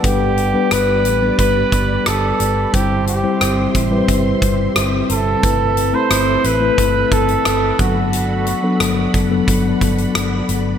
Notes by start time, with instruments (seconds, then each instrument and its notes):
Already playing: tine electric piano A4 F#5
0.03 fingered electric bass G1, tine electric piano G3 B3 D4 B4, string machine G4 D5 B5 D6, flugelhorn G4, kick, closed hi-hat
0.37 closed hi-hat
0.54 tine electric piano G3 B3 D4 B4
0.71 fingered electric bass G1, flugelhorn B4, cross-stick, closed hi-hat
1.05 fingered electric bass A1, closed hi-hat
1.21 tine electric piano G3 B3 D4 B4
1.39 fingered electric bass G1, flugelhorn B4, kick, closed hi-hat
1.72 fingered electric bass G1, kick, closed hi-hat
2.06 fingered electric bass G1, flugelhorn A4, cross-stick, closed hi-hat
2.40 fingered electric bass G1, closed hi-hat
2.73 fingered electric bass G1, tine electric piano G3 C4 E4 C5, string machine C4 E5 C6, flugelhorn G4, kick, closed hi-hat
3.07 flugelhorn G4, closed hi-hat
3.23 tine electric piano G3 C4 E4 C5
3.41 fingered electric bass G1, cross-stick, closed hi-hat
3.75 fingered electric bass A1, kick, closed hi-hat
3.91 tine electric piano G3 C4 E4 B4
3.98 tine electric piano C5
4.08 fingered electric bass G1, kick, closed hi-hat
4.42 fingered electric bass G1, kick, closed hi-hat
4.76 fingered electric bass G1, cross-stick, closed hi-hat
5.09 fingered electric bass G1, flugelhorn A4, closed hi-hat
5.42 fingered electric bass G1, tine electric piano A3 C4 E4 B4, string machine A4 B5, kick, closed hi-hat
5.77 closed hi-hat
5.93 tine electric piano A3 C4 E4 B5, flugelhorn C5
6.11 fingered electric bass G1, cross-stick, closed hi-hat
6.44 fingered electric bass A1, flugelhorn B4, closed hi-hat
6.61 tine electric piano A3 C4 E4 B4
6.78 fingered electric bass G1, kick, closed hi-hat
7.12 fingered electric bass G1, flugelhorn A4, kick, closed hi-hat
7.28 closed hi-hat
7.45 fingered electric bass G1, cross-stick, closed hi-hat
7.79 fingered electric bass G1, tine electric piano F#3 B3 D4 A4, flugelhorn F#4, string machine D5 F#5, kick, closed hi-hat
8.13 closed hi-hat
8.46 closed hi-hat
8.63 tine electric piano F#3 B3 D4 A4
8.80 fingered electric bass G1, cross-stick, closed hi-hat
9.14 fingered electric bass F#1, kick, closed hi-hat
9.30 tine electric piano F#3 B3 D4 A4
9.48 fingered electric bass G1, kick, closed hi-hat
9.81 fingered electric bass G1, kick, closed hi-hat
9.98 closed hi-hat
10.15 fingered electric bass G1, cross-stick, closed hi-hat
10.49 fingered electric bass G1, closed hi-hat